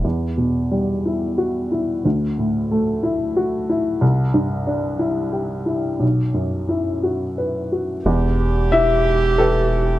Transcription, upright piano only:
X:1
M:3/4
L:1/8
Q:1/4=90
K:Em
V:1 name="Upright piano"
E,, B,, G, E F E | D,, A,, A, E F E | C,, G,, D E G E | B,,, F,, E F B F |
E,,2 [Ee]2 [GAB]2 |]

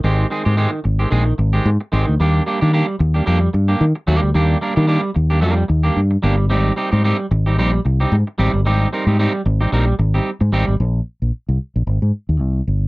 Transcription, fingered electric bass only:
X:1
M:4/4
L:1/16
Q:"Swing 16ths" 1/4=112
K:Ablyd
V:1 name="Fingered electric bass" clef=bass
A,,,2 z A,,2 z A,,,2 B,,,2 A,,,2 A,, z A,,, D,, | E,,2 z E,2 z E,,2 F,,2 G,,2 E, z E,, D,, | E,,2 z E,2 z E,,2 F,,2 E,,2 G,,2 G,,,2 | A,,,2 z A,,2 z A,,,2 B,,,2 C,,2 A,, z A,,, G,,, |
A,,,2 z A,,2 z A,,,2 B,,,2 A,,,2 z A,, A,,, A,,, | B,,,2 z B,,, z C,, z B,,, A,,, A,, z E,, C,,2 G,,,2 |]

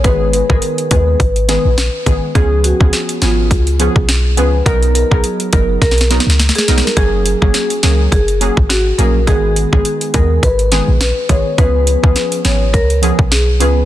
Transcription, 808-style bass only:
X:1
M:4/4
L:1/16
Q:"Swing 16ths" 1/4=104
K:F#
V:1 name="808-style bass" clef=bass
G,,,3 G,,, z2 D,,2 G,,,3 A,,,2 z G,,, z | C,,3 C,, z2 G,,,2 C,,3 B,,,3 C,,2 | B,,,3 B,,, z2 F,,,2 B,,,3 C,,2 z B,,, z | F,,,3 F,,, z2 C,,2 F,,,3 G,,,3 A,,,2 |
G,,,3 G,,, z2 D,,2 G,,,3 A,,,2 z G,,, z | C,,3 C,, z2 G,,,2 C,,3 B,,,3 C,,2 |]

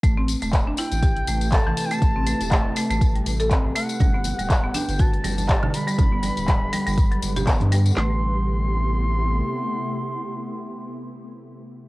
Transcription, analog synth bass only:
X:1
M:4/4
L:1/16
Q:"Swing 16ths" 1/4=121
K:Ador
V:1 name="Analog synth bass" clef=bass
A,,,2 z E,,,2 z2 A,,,2 z A,,,2 z A,,, z2 | A,,,2 z E,,,2 z2 A,,,2 z A,,,2 z A,,, z2 | G,,,2 z D,,,2 z2 G,,,2 z G,,,2 z G,,, z2 | G,,,2 z D,,,2 z2 G,,,2 z G,,,2 z G,,2 z |
A,,,12 z4 | z16 |]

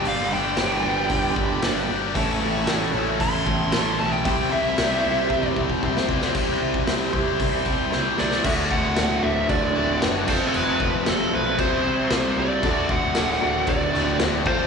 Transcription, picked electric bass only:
X:1
M:4/4
L:1/8
Q:1/4=114
K:Clyd
V:1 name="Picked electric bass" clef=bass
G,,, G,,, G,,, G,,, G,,, G,,, G,,, G,,, | A,,, A,,, A,,, A,,, A,,, A,,, A,,, B,,, | C,, C,, C,, C,, C,, C,, C,, C,, | C,, C,, C,, C,, C,, C,, C,, C,, |
D,,, D,,, D,,, D,,, D,,, D,,, F,,, =F,,, | =F,,, F,,, F,,, B,,, C,, C,, C,, C,, | D,,, D,,, D,,, D,,, D,,, D,,, D,,, =F,,, |]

